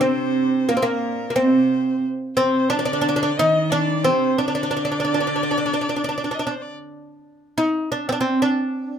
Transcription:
0.01 0.69 C3 medium
0.01 0.68 C4 medium
0.01 0.70 C5 medium
0.68 0.81 A#2 medium
0.68 0.76 A#3 medium
0.68 0.81 A#4 medium
0.77 0.83 C4 medium
0.82 1.32 A#2 medium
0.82 1.29 A#3 medium
0.82 1.38 A#4 medium
1.30 1.35 A#3 medium
1.36 2.04 C3 medium
1.36 1.99 C4 medium
1.36 2.03 C5 medium
2.37 2.68 C3 medium
2.37 2.69 C4 medium
2.37 2.71 C5 medium
2.69 3.38 D3 loud
2.69 2.78 D4 medium
2.69 3.20 D5 medium
2.79 2.84 D4 medium
2.85 2.92 D4 medium
2.93 3.00 D4 medium
3.01 3.07 D4 medium
3.09 3.15 D4 medium
3.16 3.22 D4 medium
3.21 3.30 D4 medium
3.21 3.39 D5 medium
3.37 4.05 D#3 medium
3.37 3.71 D#4 loud
3.37 3.71 D#5 medium
3.70 4.04 D4 loud
3.70 4.05 D5 medium
4.04 4.39 C3 medium
4.04 4.38 C4 medium
4.04 4.41 C5 medium
4.38 6.73 D3 medium
4.38 4.45 D4 medium
4.38 6.36 D5 medium
4.48 4.54 D4 medium
4.55 4.61 D4 medium
4.63 4.69 D4 medium
4.71 4.75 D4 medium
4.77 4.83 D4 medium
4.85 4.90 D4 medium
4.92 4.98 D4 medium
5.00 5.03 D4 medium
5.05 5.12 D4 medium
5.14 5.19 D4 medium
5.21 5.26 D4 soft
5.27 5.34 D4 soft
5.36 5.42 D4 soft
5.43 5.50 D4 soft
5.51 5.57 D4 soft
5.58 5.64 D4 medium
5.66 5.72 D4 soft
5.74 5.80 D4 medium
5.81 5.87 D4 soft
5.89 5.95 D4 medium
5.96 6.02 D4 soft
6.04 6.08 D4 medium
6.09 6.16 D4 medium
6.18 6.23 D4 medium
6.24 6.30 D4 medium
6.31 6.38 D4 medium
6.31 6.44 D#5 medium
6.39 6.45 D4 medium
6.39 6.52 D5 medium
6.47 6.54 D4 medium
6.51 6.63 C5 medium
6.62 6.72 D5 medium
7.58 7.90 D#4 medium
7.92 8.07 D4 medium
8.09 8.12 C4 medium
8.09 8.20 D4 medium
8.21 8.41 C4 medium
8.42 8.99 D4 medium

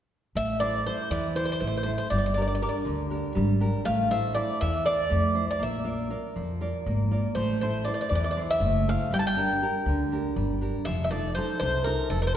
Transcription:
0.35 0.88 A1 medium
0.35 0.84 A3 medium
0.35 0.60 E5 loud
0.60 0.85 E4 soft
0.60 0.86 A4 soft
0.60 0.87 C5 medium
0.60 0.86 D5 medium
0.86 1.26 E4 soft
0.86 1.27 A4 soft
0.86 1.09 C5 medium
0.86 1.27 C5 soft
1.10 1.46 E2 medium
1.10 1.60 E3 medium
1.10 1.34 D5 medium
1.35 1.76 E4 soft
1.35 1.76 A4 soft
1.35 1.44 C5 medium
1.35 1.76 C5 medium
1.45 1.51 C5 medium
1.52 1.59 C5 medium
1.60 1.97 A1 medium
1.60 2.09 A3 medium
1.60 1.66 C5 medium
1.67 1.74 C5 medium
1.77 1.82 C5 medium
1.83 2.06 E4 soft
1.83 2.06 A4 soft
1.83 1.90 C5 medium
1.83 2.06 C5 soft
1.98 2.10 C5 medium
2.10 2.64 G1 medium
2.10 2.60 G3 medium
2.10 2.17 D5 medium
2.18 2.25 D5 medium
2.26 2.33 D5 medium
2.34 2.60 D4 soft
2.34 2.61 G4 soft
2.34 2.61 A#4 medium
2.34 2.41 D5 medium
2.42 2.46 D5 soft
2.47 2.54 D5 soft
2.55 2.61 D5 medium
2.61 3.01 D4 soft
2.61 3.01 G4 soft
2.61 3.02 A#4 medium
2.61 2.68 D5 soft
2.69 2.77 D5 medium
2.85 3.21 D2 medium
2.85 3.34 D3 medium
3.10 3.51 D4 soft
3.10 3.51 G4 soft
3.10 3.51 A#4 medium
3.35 3.71 G#1 loud
3.35 3.84 G3 medium
3.61 3.81 D4 soft
3.61 3.81 G4 soft
3.61 3.81 A#4 medium
3.85 4.39 A1 medium
3.85 4.34 A3 medium
3.85 4.11 F5 medium
4.10 4.35 E4 soft
4.10 4.34 A4 soft
4.10 4.35 C5 medium
4.10 4.34 E5 medium
4.35 4.76 E4 medium
4.35 4.76 A4 soft
4.35 4.76 C5 medium
4.35 4.58 D5 medium
4.61 4.96 E2 medium
4.61 5.10 E3 medium
4.61 4.84 E5 loud
4.85 5.25 E4 soft
4.85 5.25 A4 soft
4.85 5.25 C5 medium
4.85 5.44 D5 medium
5.10 5.46 F2 loud
5.10 5.59 A3 medium
5.34 5.55 E4 soft
5.34 5.55 A4 soft
5.34 5.55 C5 soft
5.51 5.61 D5 medium
5.59 6.14 A#1 medium
5.59 6.08 A#3 medium
5.59 6.33 E5 medium
5.84 6.09 F4 soft
5.84 6.09 A#4 soft
5.84 6.09 D5 medium
6.10 6.51 F4 medium
6.10 6.50 A#4 soft
6.10 6.51 D5 soft
6.36 6.71 F2 medium
6.36 6.84 F3 medium
6.61 7.01 F4 soft
6.61 7.01 A#4 soft
6.61 7.01 D5 soft
6.86 7.21 G#1 loud
6.86 7.35 A#3 medium
7.11 7.31 F4 soft
7.11 7.31 A#4 soft
7.11 7.31 D5 soft
7.35 7.88 A1 medium
7.35 7.84 A3 medium
7.35 7.59 C5 medium
7.61 7.86 E4 soft
7.61 7.87 A4 soft
7.61 7.84 C5 medium
7.61 7.86 C5 medium
7.85 8.27 E4 soft
7.85 8.27 A4 soft
7.85 8.27 C5 medium
7.85 7.93 D5 medium
7.94 8.00 D5 medium
8.01 8.08 D5 medium
8.09 8.46 E2 medium
8.09 8.60 E3 medium
8.09 8.14 D5 medium
8.15 8.23 D5 medium
8.24 8.30 D5 medium
8.31 8.38 D5 medium
8.36 8.76 E4 soft
8.36 8.76 A4 soft
8.36 8.77 C5 medium
8.51 8.88 E5 medium
8.60 8.95 F#1 loud
8.60 9.10 A3 medium
8.88 9.07 E4 soft
8.88 9.07 A4 soft
8.88 9.07 C5 medium
8.88 9.11 F5 medium
9.11 9.63 G1 medium
9.11 9.60 G3 medium
9.11 9.19 G5 medium
9.19 9.25 A5 medium
9.27 10.58 G5 medium
9.37 9.61 D4 medium
9.37 9.61 G4 soft
9.37 9.62 A#4 medium
9.62 10.01 D4 soft
9.62 10.02 G4 soft
9.62 10.02 A#4 medium
9.86 10.21 D2 medium
9.86 10.35 D3 medium
10.12 10.51 D4 soft
10.12 10.52 G4 soft
10.12 10.52 A#4 medium
10.36 10.71 G1 loud
10.36 10.84 G3 medium
10.61 10.81 D4 soft
10.61 10.81 G4 soft
10.61 10.81 A#4 medium
10.85 11.38 F1 medium
10.85 11.35 F3 medium
10.85 11.03 E5 loud
11.04 11.10 E5 medium
11.11 11.36 D#4 medium
11.11 11.37 F4 soft
11.11 11.37 A4 medium
11.11 11.34 D5 medium
11.35 11.76 D#4 soft
11.35 11.77 F4 soft
11.35 11.77 A4 medium
11.35 11.58 C5 medium
11.60 11.96 C2 medium
11.60 12.09 C3 medium
11.60 11.84 C5 medium
11.84 12.26 D#4 soft
11.84 12.26 F4 soft
11.84 12.26 A4 medium
11.84 12.08 A#4 medium
12.10 12.37 F1 medium
12.10 12.37 F3 medium
12.10 12.21 A4 medium
12.22 12.27 A#4 medium
12.27 12.34 C5 medium

